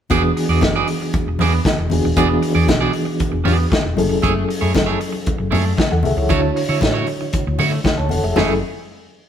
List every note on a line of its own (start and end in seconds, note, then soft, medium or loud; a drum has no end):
0.10 0.30 E1 medium
0.10 0.87 E3 medium
0.10 0.87 B3 medium
0.10 0.31 B3 medium
0.10 0.87 D4 medium
0.10 0.23 F#4 medium
0.10 0.88 F#4 medium
0.10 0.23 G#4 loud
0.10 0.88 G#4 medium
0.10 0.22 D5 medium
0.10 kick loud
0.10 closed hi-hat medium
0.10 muted conga soft
0.23 muted clean electric guitar stroke soft
0.37 muted clean electric guitar stroke soft
0.37 open hi-hat medium
0.49 0.58 E2 medium
0.49 0.62 B3 soft
0.49 0.62 F#4 soft
0.49 0.62 G#4 medium
0.49 0.63 D5 medium
0.61 0.81 F#1 medium
0.61 muted clean electric guitar stroke soft
0.61 kick medium
0.61 snare loud
0.61 closed hi-hat medium
0.61 high conga medium
0.75 0.87 B3 medium
0.75 0.87 F#4 medium
0.75 0.88 G#4 medium
0.75 0.88 D5 medium
0.87 muted clean electric guitar stroke soft
0.87 open hi-hat medium
1.01 muted clean electric guitar stroke soft
1.14 kick loud
1.14 closed hi-hat medium
1.14 muted conga soft
1.26 1.36 E1 medium
1.26 muted clean electric guitar stroke soft
1.39 1.58 E2 medium
1.39 1.60 B3 medium
1.39 1.54 F#4 medium
1.39 1.53 G#4 medium
1.39 1.53 D5 loud
1.39 open hi-hat medium
1.39 muted conga medium
1.39 low conga medium
1.54 muted clean electric guitar stroke soft
1.65 muted clean electric guitar stroke soft
1.65 kick loud
1.65 snare loud
1.65 closed hi-hat medium
1.65 high conga medium
1.78 1.87 E1 medium
1.78 muted clean electric guitar stroke soft
1.90 2.00 E1 medium
1.90 2.10 E3 medium
1.90 2.10 B3 medium
1.90 2.11 D4 medium
1.90 2.11 F#4 medium
1.90 2.11 G#4 medium
1.90 open hi-hat medium
1.90 high conga medium
2.05 2.14 D#1 medium
2.05 muted clean electric guitar stroke soft
2.16 2.36 E1 medium
2.16 2.93 E3 medium
2.16 2.94 B3 medium
2.16 2.37 B3 medium
2.16 2.94 D4 medium
2.16 2.29 F#4 medium
2.16 2.94 F#4 medium
2.16 2.29 G#4 medium
2.16 2.94 G#4 medium
2.16 2.28 D5 medium
2.16 kick loud
2.16 closed hi-hat medium
2.16 muted conga soft
2.29 muted clean electric guitar stroke soft
2.42 muted clean electric guitar stroke soft
2.42 open hi-hat medium
2.55 2.65 E2 loud
2.55 2.67 B3 soft
2.55 2.67 F#4 medium
2.55 2.67 G#4 medium
2.55 2.68 D5 medium
2.69 2.87 B1 medium
2.69 kick medium
2.69 snare loud
2.69 closed hi-hat medium
2.69 high conga medium
2.81 2.92 B3 medium
2.81 2.92 F#4 medium
2.81 2.92 G#4 medium
2.81 2.93 D5 medium
2.93 muted clean electric guitar stroke medium
2.93 open hi-hat medium
3.05 muted clean electric guitar stroke soft
3.20 kick loud
3.20 closed hi-hat medium
3.20 muted conga soft
3.32 3.42 E1 medium
3.32 muted clean electric guitar stroke soft
3.44 3.64 E2 medium
3.44 3.65 B3 medium
3.44 3.58 F#4 medium
3.44 3.57 G#4 medium
3.44 3.57 D5 medium
3.44 open hi-hat medium
3.44 muted conga medium
3.44 low conga medium
3.58 muted clean electric guitar stroke medium
3.70 muted clean electric guitar stroke soft
3.70 kick loud
3.70 snare loud
3.70 closed hi-hat soft
3.70 high conga medium
3.83 3.94 E1 medium
3.83 muted clean electric guitar stroke soft
3.96 4.10 F#1 loud
3.96 4.79 F#3 medium
3.96 4.80 C#4 medium
3.96 4.80 E4 medium
3.96 4.80 G#4 medium
3.96 4.81 A4 medium
3.96 open hi-hat medium
3.96 high conga medium
4.09 4.20 F1 medium
4.09 muted clean electric guitar stroke soft
4.22 4.42 F#1 medium
4.22 4.43 A3 medium
4.22 4.34 E4 medium
4.22 4.34 G#4 medium
4.22 4.33 C#5 medium
4.22 kick loud
4.22 closed hi-hat medium
4.22 muted conga medium
4.34 muted clean electric guitar stroke soft
4.48 muted clean electric guitar stroke soft
4.48 open hi-hat medium
4.61 4.72 F#2 loud
4.61 4.72 A3 soft
4.61 4.72 E4 medium
4.61 4.73 G#4 medium
4.61 4.73 C#5 medium
4.73 4.94 F#1 medium
4.73 muted clean electric guitar stroke soft
4.73 kick medium
4.73 snare loud
4.73 closed hi-hat medium
4.73 high conga medium
4.86 4.99 A3 medium
4.86 4.99 E4 medium
4.86 4.99 G#4 medium
4.86 5.00 C#5 medium
5.00 muted clean electric guitar stroke soft
5.00 open hi-hat medium
5.12 muted clean electric guitar stroke soft
5.26 kick loud
5.26 closed hi-hat medium
5.26 muted conga soft
5.38 5.49 F#1 medium
5.38 muted clean electric guitar stroke soft
5.51 5.72 F#2 loud
5.51 5.72 A3 medium
5.51 5.65 E4 medium
5.51 5.65 G#4 medium
5.51 5.64 C#5 medium
5.51 open hi-hat medium
5.51 muted conga medium
5.51 low conga medium
5.65 muted clean electric guitar stroke soft
5.77 muted clean electric guitar stroke soft
5.77 kick loud
5.77 snare loud
5.77 closed hi-hat soft
5.77 high conga medium
5.91 6.01 E2 medium
5.91 6.04 A4 medium
5.91 6.04 F#5 medium
5.91 muted clean electric guitar stroke medium
6.03 6.14 C2 medium
6.03 6.17 G#4 medium
6.03 6.16 E5 medium
6.03 open hi-hat medium
6.03 high conga medium
6.16 6.26 C#2 medium
6.16 6.29 E4 medium
6.16 6.29 C#5 medium
6.16 muted clean electric guitar stroke soft
6.29 6.49 D2 medium
6.29 7.06 D3 medium
6.29 6.50 A3 medium
6.29 7.07 D4 medium
6.29 6.42 E4 medium
6.29 7.07 E4 medium
6.29 6.41 F#4 medium
6.29 7.07 F#4 medium
6.29 6.41 C#5 medium
6.29 7.07 C#5 medium
6.29 kick loud
6.29 closed hi-hat medium
6.29 muted conga medium
6.42 muted clean electric guitar stroke soft
6.56 muted clean electric guitar stroke soft
6.56 open hi-hat medium
6.69 6.78 D3 medium
6.69 6.80 A3 soft
6.69 6.80 E4 soft
6.69 6.80 F#4 medium
6.69 6.81 C#5 medium
6.81 7.01 A2 medium
6.81 muted clean electric guitar stroke soft
6.81 kick medium
6.81 snare loud
6.81 closed hi-hat medium
6.81 high conga medium
6.94 7.06 A3 medium
6.94 7.06 E4 medium
6.94 7.07 F#4 medium
6.94 7.07 C#5 medium
7.07 muted clean electric guitar stroke soft
7.07 open hi-hat medium
7.21 muted clean electric guitar stroke soft
7.33 kick loud
7.33 closed hi-hat medium
7.33 muted conga soft
7.47 7.56 D2 medium
7.47 muted clean electric guitar stroke soft
7.59 7.78 D3 loud
7.59 7.79 A3 medium
7.59 7.73 E4 medium
7.59 7.72 F#4 medium
7.59 7.71 C#5 loud
7.59 open hi-hat medium
7.59 muted conga medium
7.59 low conga medium
7.73 muted clean electric guitar stroke soft
7.84 muted clean electric guitar stroke soft
7.84 kick loud
7.84 snare loud
7.84 closed hi-hat soft
7.84 high conga medium
7.97 8.08 D2 medium
7.97 8.10 C#5 medium
7.97 8.10 A5 medium
7.97 muted clean electric guitar stroke soft
8.09 8.21 E1 medium
8.09 8.23 A4 medium
8.09 8.22 F#5 medium
8.09 open hi-hat medium
8.09 high conga medium
8.23 8.33 F1 loud
8.23 8.35 G#4 medium
8.23 8.48 E5 medium
8.23 muted clean electric guitar stroke soft
8.36 8.60 F#1 medium
8.36 8.60 F#3 medium
8.36 8.52 A3 medium
8.36 8.60 C#4 medium
8.36 8.60 E4 medium
8.36 8.52 E4 medium
8.36 8.60 G#4 medium
8.36 8.52 G#4 medium
8.36 8.60 A4 medium
8.36 8.53 C#5 medium
8.36 snare medium
8.36 floor tom medium
8.36 muted conga medium